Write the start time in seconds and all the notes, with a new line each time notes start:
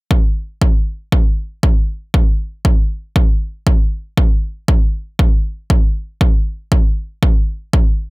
0.11 kick
0.62 kick
1.12 kick
1.63 kick
2.14 kick
2.65 kick
3.16 kick
3.67 kick
4.17 kick
4.68 kick
5.19 kick
5.70 kick
6.21 kick
6.72 kick
7.23 kick
7.73 kick